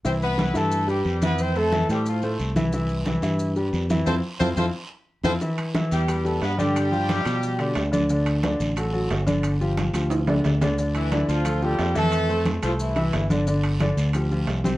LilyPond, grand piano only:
\new Staff \with { instrumentName = "Grand piano" } { \time 4/4 \key c \major \tempo 4 = 179 <e e' e''>4 <e e' e''>8 <e e' e''>4 <g g' b'>4 <e e' e''>8~ | <e e' e''>8 <a a' c''>8 <e e' e''>8 <a a' c''>4 <a a' c''>4 <e e' e''>8 | <e e' e''>4 <e e' e''>8 <e e' e''>4 <g g' b'>4 <e e' e''>8 | <c' e' f'>8 r8 <c' e' f'>8 <c' e' f'>8 r4. <c' e' f'>8 |
<e e' e''>4 <e e' e''>4 <g g' b'>8 <g g' b'>4 <d d' d''>8~ | <d d' d''>8 <f f' g'>4 <f f' g'>4 <d d' d''>4 <d d' d''>8 | <d d' d''>4 <d d' d''>4 <fis fis' a'>8 <fis fis' a'>4 <d d' d''>8~ | <d d' d''>8 <f f' g'>4 <f f' g'>4 <d d' d''>4 <d d' d''>8 |
<d d' d''>4 <d d' d''>4 <f f' a'>8 <f f' a'>4 <e e' e''>8~ | <e e' e''>8 <a a' c''>4 <a a' c''>4 <e e' e''>4 <d d' d''>8 | <d d' d''>4 <d d' d''>4 <f f' g'>8 <f f' g'>4 <c c' c''>8 | }